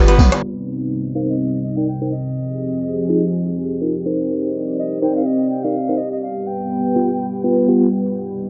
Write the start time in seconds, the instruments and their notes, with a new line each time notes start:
Already playing: analog synth pad G3 G4 B4 D5, tine electric piano F4 G4 B4, kora F4 G4 B4
0.08 kora B3, closed hi-hat, tambourine
0.19 808-style bass B1, mid tom, tambourine, darbuka ka, muted conga
0.32 cross-stick, closed hi-hat, tambourine, darbuka tek
0.42 analog synth pad C3 G3 C4 D#4
0.81 closed hi-hat
1.05 closed hi-hat
1.15 tine electric piano D#4 A#4 C5, flute F5
1.29 flute D#5, closed hi-hat
1.53 closed hi-hat
1.63 flute D#5
1.77 tine electric piano D#4 A#4 D5, flute G5, closed hi-hat
1.88 flute G5
2.02 tine electric piano D#4 A#4 C5, closed hi-hat
2.11 flute D#5
2.26 closed hi-hat
2.36 analog synth pad F3 C4 G4 G#4
2.74 closed hi-hat
2.98 closed hi-hat
3.09 tine electric piano D#4 F4 G#4
3.22 closed hi-hat
3.47 closed hi-hat
3.71 closed hi-hat
3.81 tine electric piano D#4 F4 A#4
3.96 closed hi-hat
4.06 tine electric piano D#4 A#4 C5
4.20 closed hi-hat
4.31 analog synth pad C4 D5 D#5
4.68 closed hi-hat
4.79 flute D#5
4.92 closed hi-hat
5.02 tine electric piano D#4 A#4 C5, flute G5
5.16 flute F5, closed hi-hat
5.26 flute D#5
5.40 closed hi-hat
5.50 flute G5
5.63 tine electric piano D#4 A#4 D5, flute F5, closed hi-hat
5.89 tine electric piano D#4 A#4 C5, closed hi-hat
5.97 flute D#5
6.12 flute D#5, closed hi-hat
6.22 analog synth pad G3 B3 B4, flute F5
6.47 flute G5
6.61 closed hi-hat
6.86 closed hi-hat
6.96 tine electric piano B3 F4 G4
7.10 closed hi-hat
7.34 closed hi-hat
7.44 tine electric piano B3 F4 B4
7.58 closed hi-hat
7.68 tine electric piano B3 F4 G4
7.82 closed hi-hat
8.06 closed hi-hat
8.17 analog synth pad C3 D#4